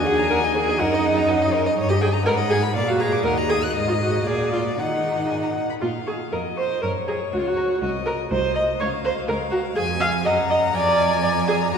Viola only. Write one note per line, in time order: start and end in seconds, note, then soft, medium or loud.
0.05 0.29 G#4 medium
0.30 0.38 A#4 medium
0.54 0.81 G#4 medium
0.80 1.77 D#4 medium
1.89 1.94 G4 medium
2.01 2.09 G#4 medium
2.26 2.34 A#4 medium
2.50 2.58 G#4 medium
2.88 3.02 F#4 medium
3.00 3.24 G#4 medium
3.24 3.32 A#4 medium
3.49 3.57 G#4 medium
3.88 3.93 F4 medium
4.00 4.25 F#4 soft
4.26 4.52 G#4 medium
4.52 4.60 F4 medium
4.78 5.55 D#4 soft
5.81 5.89 F4 soft
6.07 6.15 G#4 soft
6.32 6.40 A#4 soft
6.57 6.82 C5 medium
6.82 6.90 A#4 medium
7.08 7.16 G#4 medium
7.32 7.40 F#4 medium
7.39 7.48 F4 soft
7.47 7.81 F#4 medium
7.82 7.90 F#4 medium
8.06 8.14 A#4 medium
8.31 8.54 C5 medium
8.55 8.63 D#5 medium
8.80 8.88 C#5 medium
9.05 9.13 C5 medium
9.28 9.36 A#4 medium
9.51 9.59 F#4 medium
9.76 9.84 G#4 medium
10.00 10.08 F5 medium
10.25 10.33 D#5 medium
10.50 10.58 D#5 medium
10.75 11.22 D5 medium
11.23 11.31 D5 medium
11.48 11.56 G#4 medium
11.72 11.78 F#4 medium